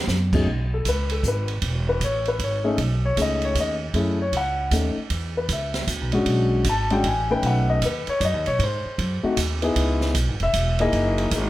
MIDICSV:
0, 0, Header, 1, 5, 480
1, 0, Start_track
1, 0, Tempo, 387597
1, 573, Time_signature, 3, 2, 24, 8
1, 14238, End_track
2, 0, Start_track
2, 0, Title_t, "Grand piano"
2, 0, Program_c, 0, 0
2, 419, Note_on_c, 0, 47, 60
2, 421, Note_on_c, 0, 57, 55
2, 428, Note_on_c, 0, 61, 54
2, 430, Note_on_c, 0, 68, 68
2, 434, Note_on_c, 0, 63, 56
2, 564, Note_off_c, 0, 47, 0
2, 565, Note_off_c, 0, 57, 0
2, 569, Note_off_c, 0, 61, 0
2, 570, Note_off_c, 0, 68, 0
2, 572, Note_off_c, 0, 63, 0
2, 915, Note_on_c, 0, 69, 72
2, 1064, Note_off_c, 0, 69, 0
2, 1096, Note_on_c, 0, 71, 70
2, 1374, Note_off_c, 0, 71, 0
2, 1383, Note_on_c, 0, 69, 68
2, 1537, Note_off_c, 0, 69, 0
2, 1582, Note_on_c, 0, 71, 67
2, 1856, Note_off_c, 0, 71, 0
2, 2340, Note_on_c, 0, 71, 77
2, 2495, Note_off_c, 0, 71, 0
2, 2528, Note_on_c, 0, 73, 79
2, 2808, Note_off_c, 0, 73, 0
2, 2825, Note_on_c, 0, 71, 74
2, 2977, Note_off_c, 0, 71, 0
2, 3019, Note_on_c, 0, 73, 68
2, 3274, Note_on_c, 0, 57, 72
2, 3278, Note_on_c, 0, 61, 67
2, 3280, Note_on_c, 0, 63, 61
2, 3287, Note_on_c, 0, 68, 76
2, 3293, Note_off_c, 0, 73, 0
2, 3429, Note_off_c, 0, 57, 0
2, 3431, Note_off_c, 0, 61, 0
2, 3432, Note_off_c, 0, 63, 0
2, 3435, Note_off_c, 0, 68, 0
2, 3783, Note_on_c, 0, 73, 82
2, 3927, Note_on_c, 0, 57, 53
2, 3931, Note_on_c, 0, 61, 46
2, 3935, Note_off_c, 0, 73, 0
2, 3939, Note_on_c, 0, 63, 43
2, 3943, Note_on_c, 0, 68, 56
2, 3984, Note_on_c, 0, 75, 83
2, 4255, Note_off_c, 0, 75, 0
2, 4269, Note_on_c, 0, 73, 77
2, 4418, Note_off_c, 0, 73, 0
2, 4461, Note_on_c, 0, 75, 75
2, 4629, Note_off_c, 0, 75, 0
2, 4653, Note_off_c, 0, 57, 0
2, 4654, Note_off_c, 0, 61, 0
2, 4658, Note_off_c, 0, 63, 0
2, 4661, Note_off_c, 0, 68, 0
2, 4886, Note_on_c, 0, 61, 55
2, 4887, Note_on_c, 0, 57, 59
2, 4897, Note_on_c, 0, 64, 60
2, 4897, Note_on_c, 0, 68, 67
2, 5163, Note_off_c, 0, 57, 0
2, 5163, Note_off_c, 0, 61, 0
2, 5168, Note_off_c, 0, 68, 0
2, 5169, Note_off_c, 0, 64, 0
2, 5222, Note_on_c, 0, 73, 74
2, 5374, Note_off_c, 0, 73, 0
2, 5409, Note_on_c, 0, 78, 79
2, 5834, Note_off_c, 0, 78, 0
2, 5845, Note_on_c, 0, 57, 53
2, 5854, Note_on_c, 0, 61, 48
2, 5859, Note_on_c, 0, 63, 48
2, 5865, Note_on_c, 0, 69, 51
2, 6122, Note_off_c, 0, 57, 0
2, 6126, Note_off_c, 0, 61, 0
2, 6129, Note_off_c, 0, 63, 0
2, 6132, Note_off_c, 0, 69, 0
2, 6654, Note_on_c, 0, 71, 63
2, 6809, Note_off_c, 0, 71, 0
2, 6845, Note_on_c, 0, 76, 68
2, 7272, Note_off_c, 0, 76, 0
2, 7589, Note_on_c, 0, 56, 64
2, 7600, Note_on_c, 0, 61, 56
2, 7603, Note_on_c, 0, 62, 59
2, 7608, Note_on_c, 0, 66, 68
2, 8207, Note_off_c, 0, 56, 0
2, 8212, Note_off_c, 0, 61, 0
2, 8214, Note_off_c, 0, 62, 0
2, 8216, Note_off_c, 0, 66, 0
2, 8290, Note_on_c, 0, 81, 77
2, 8554, Note_on_c, 0, 56, 67
2, 8560, Note_on_c, 0, 61, 56
2, 8566, Note_on_c, 0, 62, 59
2, 8567, Note_off_c, 0, 81, 0
2, 8569, Note_on_c, 0, 66, 71
2, 8576, Note_on_c, 0, 79, 89
2, 8707, Note_off_c, 0, 56, 0
2, 8710, Note_off_c, 0, 61, 0
2, 8713, Note_off_c, 0, 62, 0
2, 8714, Note_off_c, 0, 66, 0
2, 8730, Note_off_c, 0, 79, 0
2, 8759, Note_on_c, 0, 80, 85
2, 9041, Note_off_c, 0, 80, 0
2, 9044, Note_on_c, 0, 57, 64
2, 9050, Note_on_c, 0, 61, 56
2, 9054, Note_on_c, 0, 63, 56
2, 9056, Note_on_c, 0, 79, 92
2, 9059, Note_on_c, 0, 71, 75
2, 9210, Note_off_c, 0, 79, 0
2, 9244, Note_on_c, 0, 78, 80
2, 9524, Note_off_c, 0, 78, 0
2, 9532, Note_on_c, 0, 75, 88
2, 9655, Note_off_c, 0, 57, 0
2, 9658, Note_off_c, 0, 61, 0
2, 9660, Note_off_c, 0, 63, 0
2, 9662, Note_off_c, 0, 71, 0
2, 9688, Note_off_c, 0, 75, 0
2, 9728, Note_on_c, 0, 71, 65
2, 10006, Note_off_c, 0, 71, 0
2, 10023, Note_on_c, 0, 73, 87
2, 10156, Note_on_c, 0, 74, 62
2, 10174, Note_off_c, 0, 73, 0
2, 10187, Note_off_c, 0, 74, 0
2, 10215, Note_on_c, 0, 75, 79
2, 10490, Note_off_c, 0, 75, 0
2, 10492, Note_on_c, 0, 73, 85
2, 10649, Note_off_c, 0, 73, 0
2, 10695, Note_on_c, 0, 72, 73
2, 11434, Note_on_c, 0, 57, 63
2, 11440, Note_on_c, 0, 60, 62
2, 11441, Note_on_c, 0, 63, 57
2, 11449, Note_on_c, 0, 66, 76
2, 11588, Note_off_c, 0, 57, 0
2, 11591, Note_off_c, 0, 60, 0
2, 11592, Note_off_c, 0, 63, 0
2, 11596, Note_off_c, 0, 66, 0
2, 11917, Note_on_c, 0, 59, 73
2, 11919, Note_on_c, 0, 63, 61
2, 11922, Note_on_c, 0, 64, 64
2, 11935, Note_on_c, 0, 68, 79
2, 12062, Note_off_c, 0, 72, 0
2, 12534, Note_off_c, 0, 59, 0
2, 12535, Note_off_c, 0, 63, 0
2, 12537, Note_off_c, 0, 64, 0
2, 12543, Note_off_c, 0, 68, 0
2, 12914, Note_on_c, 0, 76, 98
2, 13344, Note_off_c, 0, 76, 0
2, 13376, Note_on_c, 0, 58, 75
2, 13377, Note_on_c, 0, 63, 65
2, 13384, Note_on_c, 0, 64, 62
2, 13386, Note_on_c, 0, 68, 78
2, 13392, Note_on_c, 0, 75, 90
2, 13983, Note_off_c, 0, 75, 0
2, 13985, Note_off_c, 0, 58, 0
2, 13986, Note_off_c, 0, 63, 0
2, 13989, Note_off_c, 0, 64, 0
2, 13990, Note_off_c, 0, 68, 0
2, 14026, Note_on_c, 0, 58, 50
2, 14032, Note_on_c, 0, 63, 50
2, 14034, Note_on_c, 0, 64, 47
2, 14038, Note_on_c, 0, 68, 55
2, 14238, Note_off_c, 0, 58, 0
2, 14238, Note_off_c, 0, 63, 0
2, 14238, Note_off_c, 0, 64, 0
2, 14238, Note_off_c, 0, 68, 0
2, 14238, End_track
3, 0, Start_track
3, 0, Title_t, "Upright bass"
3, 0, Program_c, 1, 32
3, 92, Note_on_c, 1, 42, 82
3, 558, Note_off_c, 1, 42, 0
3, 574, Note_on_c, 1, 35, 73
3, 1038, Note_off_c, 1, 35, 0
3, 1055, Note_on_c, 1, 37, 76
3, 1518, Note_off_c, 1, 37, 0
3, 1529, Note_on_c, 1, 32, 79
3, 1994, Note_off_c, 1, 32, 0
3, 2004, Note_on_c, 1, 28, 74
3, 2472, Note_off_c, 1, 28, 0
3, 2484, Note_on_c, 1, 33, 79
3, 2951, Note_off_c, 1, 33, 0
3, 2960, Note_on_c, 1, 32, 77
3, 3428, Note_off_c, 1, 32, 0
3, 3443, Note_on_c, 1, 35, 79
3, 3910, Note_off_c, 1, 35, 0
3, 3923, Note_on_c, 1, 37, 74
3, 4390, Note_off_c, 1, 37, 0
3, 4396, Note_on_c, 1, 39, 84
3, 4865, Note_off_c, 1, 39, 0
3, 4877, Note_on_c, 1, 42, 75
3, 5346, Note_off_c, 1, 42, 0
3, 5354, Note_on_c, 1, 37, 78
3, 5824, Note_off_c, 1, 37, 0
3, 5835, Note_on_c, 1, 39, 81
3, 6126, Note_off_c, 1, 39, 0
3, 6317, Note_on_c, 1, 40, 74
3, 6785, Note_off_c, 1, 40, 0
3, 6794, Note_on_c, 1, 37, 81
3, 7263, Note_off_c, 1, 37, 0
3, 7274, Note_on_c, 1, 38, 77
3, 7442, Note_off_c, 1, 38, 0
3, 7442, Note_on_c, 1, 35, 53
3, 7593, Note_off_c, 1, 35, 0
3, 7600, Note_on_c, 1, 32, 56
3, 7743, Note_off_c, 1, 32, 0
3, 7750, Note_on_c, 1, 35, 82
3, 8222, Note_off_c, 1, 35, 0
3, 8234, Note_on_c, 1, 32, 76
3, 8703, Note_off_c, 1, 32, 0
3, 8714, Note_on_c, 1, 33, 82
3, 9184, Note_off_c, 1, 33, 0
3, 9194, Note_on_c, 1, 35, 82
3, 9664, Note_off_c, 1, 35, 0
3, 9682, Note_on_c, 1, 39, 84
3, 9970, Note_off_c, 1, 39, 0
3, 10161, Note_on_c, 1, 42, 89
3, 10323, Note_off_c, 1, 42, 0
3, 10323, Note_on_c, 1, 39, 56
3, 10483, Note_off_c, 1, 39, 0
3, 10491, Note_on_c, 1, 35, 57
3, 10631, Note_off_c, 1, 35, 0
3, 10638, Note_on_c, 1, 44, 78
3, 10929, Note_off_c, 1, 44, 0
3, 11126, Note_on_c, 1, 42, 82
3, 11413, Note_off_c, 1, 42, 0
3, 11608, Note_on_c, 1, 39, 81
3, 12073, Note_off_c, 1, 39, 0
3, 12082, Note_on_c, 1, 37, 77
3, 12551, Note_off_c, 1, 37, 0
3, 12566, Note_on_c, 1, 35, 75
3, 12731, Note_off_c, 1, 35, 0
3, 12731, Note_on_c, 1, 32, 54
3, 12875, Note_off_c, 1, 32, 0
3, 12883, Note_on_c, 1, 28, 64
3, 13034, Note_off_c, 1, 28, 0
3, 13046, Note_on_c, 1, 28, 84
3, 13514, Note_off_c, 1, 28, 0
3, 13526, Note_on_c, 1, 30, 78
3, 13995, Note_off_c, 1, 30, 0
3, 14010, Note_on_c, 1, 32, 85
3, 14238, Note_off_c, 1, 32, 0
3, 14238, End_track
4, 0, Start_track
4, 0, Title_t, "Muted upright bass strokes"
4, 6149, Note_on_c, 9, 29, 34
4, 6273, Note_off_c, 9, 29, 0
4, 10001, Note_on_c, 9, 29, 39
4, 10125, Note_off_c, 9, 29, 0
4, 10965, Note_on_c, 9, 29, 37
4, 11089, Note_off_c, 9, 29, 0
4, 11437, Note_on_c, 9, 29, 35
4, 11561, Note_off_c, 9, 29, 0
4, 14238, End_track
5, 0, Start_track
5, 0, Title_t, "Drums"
5, 96, Note_on_c, 9, 38, 54
5, 96, Note_on_c, 9, 44, 48
5, 220, Note_off_c, 9, 38, 0
5, 220, Note_off_c, 9, 44, 0
5, 407, Note_on_c, 9, 36, 66
5, 410, Note_on_c, 9, 49, 65
5, 530, Note_off_c, 9, 36, 0
5, 533, Note_off_c, 9, 49, 0
5, 576, Note_on_c, 9, 36, 19
5, 699, Note_off_c, 9, 36, 0
5, 1051, Note_on_c, 9, 36, 21
5, 1054, Note_on_c, 9, 44, 60
5, 1054, Note_on_c, 9, 51, 63
5, 1175, Note_off_c, 9, 36, 0
5, 1178, Note_off_c, 9, 44, 0
5, 1178, Note_off_c, 9, 51, 0
5, 1356, Note_on_c, 9, 51, 55
5, 1480, Note_off_c, 9, 51, 0
5, 1526, Note_on_c, 9, 44, 64
5, 1527, Note_on_c, 9, 36, 24
5, 1649, Note_off_c, 9, 44, 0
5, 1651, Note_off_c, 9, 36, 0
5, 1832, Note_on_c, 9, 51, 41
5, 1956, Note_off_c, 9, 51, 0
5, 2002, Note_on_c, 9, 51, 61
5, 2004, Note_on_c, 9, 36, 22
5, 2126, Note_off_c, 9, 51, 0
5, 2128, Note_off_c, 9, 36, 0
5, 2484, Note_on_c, 9, 36, 20
5, 2488, Note_on_c, 9, 44, 55
5, 2488, Note_on_c, 9, 51, 66
5, 2607, Note_off_c, 9, 36, 0
5, 2612, Note_off_c, 9, 44, 0
5, 2612, Note_off_c, 9, 51, 0
5, 2792, Note_on_c, 9, 51, 40
5, 2915, Note_off_c, 9, 51, 0
5, 2962, Note_on_c, 9, 36, 21
5, 2965, Note_on_c, 9, 51, 58
5, 3086, Note_off_c, 9, 36, 0
5, 3089, Note_off_c, 9, 51, 0
5, 3441, Note_on_c, 9, 36, 21
5, 3442, Note_on_c, 9, 51, 60
5, 3565, Note_off_c, 9, 36, 0
5, 3566, Note_off_c, 9, 51, 0
5, 3920, Note_on_c, 9, 36, 23
5, 3926, Note_on_c, 9, 44, 51
5, 3926, Note_on_c, 9, 51, 67
5, 4044, Note_off_c, 9, 36, 0
5, 4049, Note_off_c, 9, 44, 0
5, 4049, Note_off_c, 9, 51, 0
5, 4230, Note_on_c, 9, 51, 38
5, 4354, Note_off_c, 9, 51, 0
5, 4399, Note_on_c, 9, 36, 20
5, 4401, Note_on_c, 9, 44, 47
5, 4401, Note_on_c, 9, 51, 64
5, 4523, Note_off_c, 9, 36, 0
5, 4524, Note_off_c, 9, 44, 0
5, 4524, Note_off_c, 9, 51, 0
5, 4877, Note_on_c, 9, 36, 20
5, 4877, Note_on_c, 9, 51, 52
5, 5001, Note_off_c, 9, 36, 0
5, 5001, Note_off_c, 9, 51, 0
5, 5356, Note_on_c, 9, 36, 20
5, 5360, Note_on_c, 9, 51, 59
5, 5480, Note_off_c, 9, 36, 0
5, 5483, Note_off_c, 9, 51, 0
5, 5836, Note_on_c, 9, 36, 18
5, 5836, Note_on_c, 9, 44, 57
5, 5836, Note_on_c, 9, 51, 63
5, 5960, Note_off_c, 9, 36, 0
5, 5960, Note_off_c, 9, 44, 0
5, 5960, Note_off_c, 9, 51, 0
5, 6315, Note_on_c, 9, 51, 62
5, 6316, Note_on_c, 9, 36, 17
5, 6439, Note_off_c, 9, 51, 0
5, 6440, Note_off_c, 9, 36, 0
5, 6794, Note_on_c, 9, 36, 21
5, 6794, Note_on_c, 9, 44, 51
5, 6794, Note_on_c, 9, 51, 63
5, 6918, Note_off_c, 9, 36, 0
5, 6918, Note_off_c, 9, 44, 0
5, 6918, Note_off_c, 9, 51, 0
5, 7107, Note_on_c, 9, 38, 52
5, 7107, Note_on_c, 9, 51, 42
5, 7230, Note_off_c, 9, 38, 0
5, 7230, Note_off_c, 9, 51, 0
5, 7274, Note_on_c, 9, 36, 28
5, 7275, Note_on_c, 9, 44, 58
5, 7275, Note_on_c, 9, 51, 64
5, 7398, Note_off_c, 9, 36, 0
5, 7399, Note_off_c, 9, 44, 0
5, 7399, Note_off_c, 9, 51, 0
5, 7577, Note_on_c, 9, 51, 42
5, 7701, Note_off_c, 9, 51, 0
5, 7750, Note_on_c, 9, 51, 59
5, 7753, Note_on_c, 9, 36, 22
5, 7874, Note_off_c, 9, 51, 0
5, 7877, Note_off_c, 9, 36, 0
5, 8228, Note_on_c, 9, 44, 53
5, 8228, Note_on_c, 9, 51, 70
5, 8233, Note_on_c, 9, 36, 23
5, 8352, Note_off_c, 9, 44, 0
5, 8352, Note_off_c, 9, 51, 0
5, 8357, Note_off_c, 9, 36, 0
5, 8548, Note_on_c, 9, 51, 41
5, 8671, Note_off_c, 9, 51, 0
5, 8714, Note_on_c, 9, 36, 21
5, 8715, Note_on_c, 9, 51, 63
5, 8838, Note_off_c, 9, 36, 0
5, 8839, Note_off_c, 9, 51, 0
5, 9197, Note_on_c, 9, 36, 22
5, 9199, Note_on_c, 9, 51, 58
5, 9321, Note_off_c, 9, 36, 0
5, 9323, Note_off_c, 9, 51, 0
5, 9679, Note_on_c, 9, 36, 22
5, 9681, Note_on_c, 9, 44, 52
5, 9681, Note_on_c, 9, 51, 72
5, 9803, Note_off_c, 9, 36, 0
5, 9805, Note_off_c, 9, 44, 0
5, 9805, Note_off_c, 9, 51, 0
5, 9993, Note_on_c, 9, 51, 45
5, 10117, Note_off_c, 9, 51, 0
5, 10162, Note_on_c, 9, 36, 21
5, 10164, Note_on_c, 9, 44, 52
5, 10164, Note_on_c, 9, 51, 66
5, 10286, Note_off_c, 9, 36, 0
5, 10288, Note_off_c, 9, 44, 0
5, 10288, Note_off_c, 9, 51, 0
5, 10476, Note_on_c, 9, 51, 43
5, 10600, Note_off_c, 9, 51, 0
5, 10643, Note_on_c, 9, 36, 20
5, 10645, Note_on_c, 9, 51, 59
5, 10766, Note_off_c, 9, 36, 0
5, 10768, Note_off_c, 9, 51, 0
5, 11125, Note_on_c, 9, 36, 25
5, 11128, Note_on_c, 9, 51, 68
5, 11249, Note_off_c, 9, 36, 0
5, 11252, Note_off_c, 9, 51, 0
5, 11603, Note_on_c, 9, 44, 60
5, 11603, Note_on_c, 9, 51, 75
5, 11604, Note_on_c, 9, 36, 24
5, 11727, Note_off_c, 9, 44, 0
5, 11727, Note_off_c, 9, 51, 0
5, 11728, Note_off_c, 9, 36, 0
5, 11914, Note_on_c, 9, 51, 46
5, 12038, Note_off_c, 9, 51, 0
5, 12085, Note_on_c, 9, 36, 22
5, 12086, Note_on_c, 9, 51, 62
5, 12209, Note_off_c, 9, 36, 0
5, 12210, Note_off_c, 9, 51, 0
5, 12395, Note_on_c, 9, 38, 42
5, 12519, Note_off_c, 9, 38, 0
5, 12564, Note_on_c, 9, 44, 57
5, 12564, Note_on_c, 9, 51, 68
5, 12565, Note_on_c, 9, 36, 18
5, 12688, Note_off_c, 9, 44, 0
5, 12688, Note_off_c, 9, 51, 0
5, 12689, Note_off_c, 9, 36, 0
5, 12876, Note_on_c, 9, 51, 45
5, 13000, Note_off_c, 9, 51, 0
5, 13047, Note_on_c, 9, 36, 19
5, 13047, Note_on_c, 9, 44, 55
5, 13047, Note_on_c, 9, 51, 72
5, 13171, Note_off_c, 9, 36, 0
5, 13171, Note_off_c, 9, 44, 0
5, 13171, Note_off_c, 9, 51, 0
5, 13359, Note_on_c, 9, 51, 47
5, 13482, Note_off_c, 9, 51, 0
5, 13528, Note_on_c, 9, 36, 26
5, 13532, Note_on_c, 9, 51, 57
5, 13652, Note_off_c, 9, 36, 0
5, 13656, Note_off_c, 9, 51, 0
5, 13845, Note_on_c, 9, 51, 47
5, 13969, Note_off_c, 9, 51, 0
5, 14009, Note_on_c, 9, 44, 58
5, 14009, Note_on_c, 9, 51, 71
5, 14010, Note_on_c, 9, 36, 19
5, 14133, Note_off_c, 9, 44, 0
5, 14133, Note_off_c, 9, 51, 0
5, 14134, Note_off_c, 9, 36, 0
5, 14238, End_track
0, 0, End_of_file